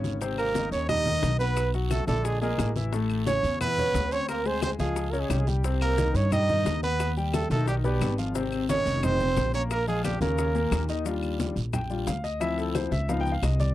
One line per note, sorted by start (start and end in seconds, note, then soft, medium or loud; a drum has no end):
0.00 0.66 G#1 medium
0.00 0.15 C#3 medium
0.00 0.15 C#4 medium
0.00 0.16 C#5 medium
0.04 high bongo soft
0.04 high conga medium
0.04 short guiro medium
0.04 maracas soft
0.21 0.49 C3 medium
0.21 0.49 C4 medium
0.21 0.50 C5 medium
0.21 high bongo medium
0.21 high conga soft
0.21 long guiro medium
0.21 maracas medium
0.38 0.70 A#3 medium
0.38 0.70 A#4 medium
0.38 high conga soft
0.38 claves medium
0.38 maracas soft
0.55 0.83 D#3 medium
0.55 0.83 D#4 medium
0.55 0.83 D#5 medium
0.55 high bongo medium
0.55 high conga loud
0.55 short guiro medium
0.55 maracas medium
0.71 1.19 D#2 medium
0.71 0.88 C#4 medium
0.71 0.88 C#5 medium
0.71 high conga soft
0.71 short guiro medium
0.71 maracas soft
0.88 1.03 G3 medium
0.88 1.36 D#4 medium
0.88 1.03 G4 medium
0.88 1.36 D#5 loud
0.88 1.04 G5 medium
0.88 high bongo medium
0.88 high conga soft
0.88 low conga medium
0.88 long guiro medium
0.88 claves medium
0.88 maracas medium
1.06 1.34 D#3 medium
1.06 1.34 D#4 medium
1.06 1.34 D#5 medium
1.06 high conga soft
1.06 low conga medium
1.06 maracas soft
1.22 2.02 B1 loud
1.22 high bongo medium
1.22 low bongo medium
1.22 high conga medium
1.22 short guiro medium
1.22 maracas medium
1.39 1.71 B3 medium
1.39 1.68 B3 medium
1.39 1.71 B4 loud
1.39 1.68 B4 medium
1.39 1.68 B5 medium
1.39 high conga soft
1.39 short guiro medium
1.39 maracas soft
1.56 high bongo medium
1.56 high conga soft
1.56 long guiro medium
1.56 claves medium
1.56 maracas medium
1.74 2.02 F#3 medium
1.74 2.02 F#4 medium
1.74 2.02 F#5 medium
1.74 high conga soft
1.74 maracas soft
1.90 2.06 A3 medium
1.90 2.07 A4 medium
1.90 high bongo medium
1.90 high conga loud
1.90 short guiro medium
1.90 claves medium
1.90 maracas medium
2.07 2.55 A#1 medium
2.07 2.36 D3 medium
2.07 2.26 A3 medium
2.07 2.36 D4 medium
2.07 2.26 A4 medium
2.07 2.36 D5 medium
2.07 high bongo soft
2.07 high conga medium
2.07 short guiro medium
2.07 maracas soft
2.24 2.41 G#3 medium
2.24 2.41 G#4 medium
2.24 high bongo medium
2.24 high conga soft
2.24 long guiro medium
2.24 maracas medium
2.42 2.70 A#2 medium
2.42 2.74 G#3 medium
2.42 2.70 A#3 medium
2.42 2.73 G#4 medium
2.42 2.70 A#4 medium
2.42 high bongo soft
2.42 high conga soft
2.42 maracas soft
2.58 3.38 A1 loud
2.58 high bongo medium
2.58 low bongo medium
2.58 high conga soft
2.58 short guiro medium
2.58 claves medium
2.58 maracas medium
2.76 2.90 E3 medium
2.76 2.90 E4 medium
2.76 2.90 E5 medium
2.76 high bongo soft
2.76 high conga medium
2.76 short guiro medium
2.76 maracas soft
2.93 3.21 A2 medium
2.93 3.21 A3 medium
2.93 3.21 A4 medium
2.93 high bongo medium
2.93 high conga soft
2.93 long guiro medium
2.93 maracas medium
3.10 high conga soft
3.10 claves medium
3.10 maracas soft
3.27 3.55 C#3 medium
3.27 3.59 C#4 loud
3.27 3.55 C#4 medium
3.27 3.58 C#5 loud
3.27 3.55 C#5 medium
3.27 high bongo medium
3.27 high conga loud
3.27 short guiro medium
3.27 maracas medium
3.43 3.91 E2 medium
3.43 high conga soft
3.43 short guiro medium
3.43 maracas soft
3.60 3.75 E3 medium
3.60 4.14 B3 medium
3.60 3.75 E4 medium
3.60 4.14 B4 loud
3.60 3.75 E5 medium
3.60 high bongo medium
3.60 high conga soft
3.60 low conga medium
3.60 long guiro medium
3.60 claves medium
3.60 maracas medium
3.78 4.06 C#3 medium
3.78 4.06 C#4 medium
3.78 4.06 C#5 medium
3.78 high conga soft
3.78 low conga medium
3.78 maracas soft
3.94 4.73 D2 medium
3.94 high bongo medium
3.94 low bongo medium
3.94 high conga medium
3.94 short guiro medium
3.94 maracas medium
4.11 4.40 C4 medium
4.11 4.28 C#4 medium
4.11 4.40 C5 medium
4.11 4.29 C#5 loud
4.11 4.40 C6 medium
4.11 high conga soft
4.11 short guiro medium
4.11 maracas soft
4.29 4.47 A#3 medium
4.29 4.48 A#4 medium
4.29 high bongo medium
4.29 high conga soft
4.29 long guiro medium
4.29 claves medium
4.29 maracas medium
4.45 4.73 G#3 medium
4.45 4.63 C4 medium
4.45 4.73 G#4 medium
4.45 4.62 C5 medium
4.45 4.74 G#5 medium
4.45 high conga soft
4.45 maracas soft
4.62 4.71 C4 medium
4.62 4.71 C5 medium
4.62 high bongo medium
4.62 high conga loud
4.62 short guiro medium
4.62 claves medium
4.62 maracas medium
4.79 5.26 C#2 medium
4.79 5.07 F3 medium
4.79 5.12 G#3 medium
4.79 5.08 F4 medium
4.79 5.13 G#4 medium
4.79 5.08 F5 medium
4.79 high bongo soft
4.79 high conga medium
4.79 short guiro medium
4.79 maracas soft
4.96 high bongo medium
4.96 high conga soft
4.96 long guiro medium
4.96 maracas medium
5.11 5.41 C#3 medium
5.11 5.21 A#3 medium
5.11 5.41 C#4 medium
5.11 5.22 A#4 medium
5.11 5.41 C#5 medium
5.11 high bongo soft
5.11 high conga soft
5.11 maracas soft
5.20 5.30 G#3 medium
5.20 5.31 G#4 medium
5.29 6.09 C2 medium
5.29 5.40 G3 medium
5.29 5.40 G4 medium
5.29 high bongo medium
5.29 low bongo medium
5.29 high conga soft
5.29 short guiro medium
5.29 claves medium
5.29 maracas medium
5.38 5.47 G#3 medium
5.38 5.48 G#4 medium
5.47 5.61 G3 medium
5.47 5.61 G4 medium
5.47 5.62 G5 medium
5.47 high bongo soft
5.47 high conga medium
5.47 short guiro medium
5.47 maracas soft
5.64 5.92 C3 medium
5.64 5.92 C4 medium
5.64 5.93 C5 medium
5.64 high bongo medium
5.64 high conga soft
5.64 long guiro medium
5.64 maracas medium
5.81 6.17 A#3 medium
5.81 6.17 A#4 loud
5.81 high conga soft
5.81 claves medium
5.81 maracas soft
5.98 6.26 D#3 medium
5.98 6.26 D#4 medium
5.98 6.27 D#5 medium
5.98 high bongo medium
5.98 high conga loud
5.98 short guiro medium
5.98 maracas medium
6.14 6.62 G2 loud
6.14 6.32 C#4 medium
6.14 6.32 C#5 medium
6.14 high conga soft
6.14 short guiro medium
6.14 maracas soft
6.32 6.46 G3 medium
6.32 6.79 D#4 medium
6.32 6.46 G4 medium
6.32 6.80 D#5 loud
6.32 6.47 G5 medium
6.32 high bongo medium
6.32 high conga soft
6.32 low conga medium
6.32 long guiro medium
6.32 claves medium
6.32 maracas medium
6.49 6.77 D#3 medium
6.49 6.77 D#4 medium
6.49 6.77 D#5 medium
6.49 high conga soft
6.49 low conga medium
6.49 maracas soft
6.65 7.44 D#2 medium
6.65 high bongo medium
6.65 low bongo medium
6.65 high conga medium
6.65 short guiro medium
6.65 maracas medium
6.83 7.14 B3 medium
6.83 7.11 B3 medium
6.83 7.11 B4 medium
6.83 7.15 B4 loud
6.83 7.11 B5 medium
6.83 high conga soft
6.83 short guiro medium
6.83 maracas soft
7.00 high bongo medium
7.00 high conga soft
7.00 long guiro medium
7.00 claves medium
7.00 maracas medium
7.17 7.45 G3 medium
7.17 7.45 G4 medium
7.17 7.45 G5 medium
7.17 high conga soft
7.17 maracas soft
7.33 7.49 A3 medium
7.33 7.50 A4 medium
7.33 high bongo medium
7.33 high conga loud
7.33 short guiro medium
7.33 claves medium
7.33 maracas medium
7.50 7.97 B1 medium
7.50 7.78 D#3 medium
7.50 7.66 A3 medium
7.50 7.79 D#4 medium
7.50 7.67 A4 medium
7.50 7.79 D#5 medium
7.50 high bongo soft
7.50 high conga loud
7.50 short guiro medium
7.50 maracas soft
7.67 7.75 G3 medium
7.67 7.76 G4 medium
7.67 high bongo medium
7.67 high conga soft
7.67 long guiro medium
7.67 maracas medium
7.84 8.12 B2 medium
7.84 8.16 G3 medium
7.84 8.12 B3 medium
7.84 8.16 G4 medium
7.84 8.12 B4 medium
7.84 high bongo soft
7.84 high conga soft
7.84 maracas soft
8.01 8.80 G#1 loud
8.01 high bongo medium
8.01 low bongo medium
8.01 high conga soft
8.01 short guiro medium
8.01 claves medium
8.01 maracas medium
8.18 8.32 F3 medium
8.18 8.32 F4 medium
8.18 8.32 F5 medium
8.18 high bongo soft
8.18 short guiro medium
8.18 maracas soft
8.35 8.63 C3 medium
8.35 8.63 C4 medium
8.35 8.63 C5 medium
8.35 high bongo medium
8.35 high conga soft
8.35 long guiro medium
8.35 maracas medium
8.52 high conga soft
8.52 claves medium
8.52 maracas soft
8.69 8.97 D#3 medium
8.69 9.05 C#4 loud
8.69 8.97 D#4 medium
8.69 9.06 C#5 loud
8.69 8.97 D#5 medium
8.69 high bongo medium
8.69 high conga loud
8.69 short guiro medium
8.69 maracas medium
8.86 9.33 F1 medium
8.86 high conga soft
8.86 short guiro medium
8.86 maracas soft
9.03 9.17 D#3 medium
9.03 9.54 C4 medium
9.03 9.17 D#4 medium
9.03 9.54 C5 loud
9.03 9.17 D#5 medium
9.03 high bongo medium
9.03 high conga soft
9.03 low conga medium
9.03 long guiro medium
9.03 claves medium
9.03 maracas medium
9.20 9.47 C3 medium
9.20 9.48 C4 medium
9.20 9.48 C5 medium
9.20 high conga soft
9.20 low conga medium
9.20 maracas soft
9.37 10.16 A#1 medium
9.37 high bongo medium
9.37 low bongo medium
9.37 high conga medium
9.37 short guiro medium
9.37 maracas medium
9.54 9.82 A#3 medium
9.54 9.62 C#4 medium
9.54 9.82 A#4 medium
9.54 9.62 C#5 loud
9.54 9.82 A#5 medium
9.54 high conga soft
9.54 short guiro medium
9.54 maracas soft
9.71 9.86 A#3 medium
9.71 9.87 A#4 loud
9.71 high bongo medium
9.71 high conga soft
9.71 long guiro medium
9.71 claves medium
9.71 maracas medium
9.87 10.15 F3 medium
9.87 10.03 G#3 medium
9.87 10.15 F4 medium
9.87 10.04 G#4 medium
9.87 10.16 F5 medium
9.87 high conga soft
9.87 maracas soft
10.04 10.20 G3 medium
10.04 10.20 G4 medium
10.04 high bongo medium
10.04 high conga loud
10.04 short guiro medium
10.04 claves medium
10.04 maracas medium
10.21 10.68 D#2 medium
10.21 10.49 C#3 medium
10.21 10.85 A#3 medium
10.21 10.49 C#4 medium
10.21 10.85 A#4 medium
10.21 10.50 C#5 medium
10.21 high bongo soft
10.21 high conga medium
10.21 short guiro medium
10.21 maracas soft
10.38 high bongo medium
10.38 high conga soft
10.38 long guiro medium
10.38 maracas medium
10.55 10.83 A#2 medium
10.55 10.83 A#3 medium
10.55 10.83 A#4 medium
10.55 high bongo soft
10.55 high conga soft
10.55 maracas soft
10.71 11.51 D#2 loud
10.71 high bongo medium
10.71 low bongo medium
10.71 high conga soft
10.71 short guiro medium
10.71 claves medium
10.71 maracas medium
10.89 11.03 D#3 medium
10.89 11.03 D#4 medium
10.89 11.03 D#5 medium
10.89 high bongo soft
10.89 short guiro medium
10.89 maracas soft
11.05 11.54 G3 medium
11.05 11.54 D4 soft
11.05 11.54 F4 medium
11.05 high bongo medium
11.05 high conga soft
11.05 long guiro medium
11.05 maracas medium
11.23 high conga soft
11.23 claves medium
11.23 maracas soft
11.39 high bongo medium
11.39 high conga loud
11.39 short guiro medium
11.39 maracas medium
11.56 12.03 A#1 medium
11.56 high conga soft
11.56 short guiro medium
11.56 maracas soft
11.73 12.05 G5 medium
11.73 high bongo medium
11.73 high conga soft
11.73 low conga medium
11.73 long guiro medium
11.73 claves medium
11.73 maracas medium
11.90 12.06 G3 soft
11.90 12.06 D4 soft
11.90 12.06 F4 soft
11.90 high conga soft
11.90 maracas soft
12.07 12.86 D2 medium
12.07 12.24 F5 medium
12.07 high bongo medium
12.07 low bongo medium
12.07 high conga medium
12.07 short guiro medium
12.07 maracas medium
12.24 12.41 D#5 medium
12.24 high conga soft
12.24 short guiro medium
12.24 maracas soft
12.40 12.89 F3 medium
12.40 12.89 C4 medium
12.40 12.90 E4 medium
12.40 12.58 E5 loud
12.40 high bongo medium
12.40 high conga soft
12.40 long guiro medium
12.40 claves medium
12.40 maracas medium
12.58 12.74 A4 medium
12.58 high conga soft
12.58 maracas soft
12.75 12.92 C5 medium
12.75 high bongo medium
12.75 high conga loud
12.75 short guiro medium
12.75 claves medium
12.75 maracas medium
12.91 13.39 C#2 medium
12.91 13.08 E5 medium
12.91 high bongo soft
12.91 high conga medium
12.91 short guiro medium
12.91 maracas soft
13.09 13.31 F3 medium
13.09 13.32 B3 soft
13.09 13.32 D#4 medium
13.09 13.20 F5 medium
13.09 high bongo medium
13.09 high conga soft
13.09 long guiro medium
13.09 maracas medium
13.21 13.31 G5 loud
13.26 high bongo soft
13.26 high conga soft
13.26 maracas soft
13.32 13.43 F5 medium
13.42 13.74 C2 medium
13.42 13.60 D#5 medium
13.42 high bongo medium
13.42 low bongo medium
13.42 high conga soft
13.42 short guiro medium
13.42 claves medium
13.42 maracas medium
13.60 13.74 D5 medium
13.60 high bongo soft
13.60 high conga medium
13.60 short guiro medium
13.60 maracas soft